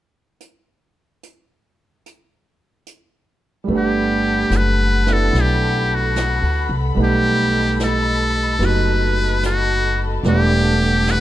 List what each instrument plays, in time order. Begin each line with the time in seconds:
0.40 closed hi-hat
1.23 closed hi-hat
2.06 closed hi-hat
2.87 closed hi-hat
3.64 grand piano G3 A3, string section F#5
3.68 upright bass G1, grand piano B3, string section A4 A5 B5, brush sweep
3.72 grand piano D4 F#5
3.78 muted trumpet G4
4.50 upright bass F#1, snare, hi-hat pedal
4.56 muted trumpet B4
5.06 grand piano B3 D4 E4 A4, snare
5.13 muted trumpet A4
5.33 upright bass B1, brush sweep, snare
5.41 muted trumpet G4
5.95 muted trumpet F#4
6.16 snare, hi-hat pedal
6.42 upright bass D2
6.69 upright bass C2
6.95 upright bass B1, grand piano G3 A3 B3 D#4, string section D#5 A5, brush sweep
7.00 muted trumpet G4, grand piano F#5
7.80 snare, hi-hat pedal
7.84 muted trumpet A4
8.59 upright bass F#1, grand piano B3 D#4 F#4, brush sweep, snare
8.65 muted trumpet B4
9.43 muted trumpet F#4, snare, hi-hat pedal
10.23 upright bass E1, grand piano G3 A3 B3 D4 F#5, string section F#5 D6, brush sweep, snare
10.29 muted trumpet G4
11.07 muted trumpet B4, snare, hi-hat pedal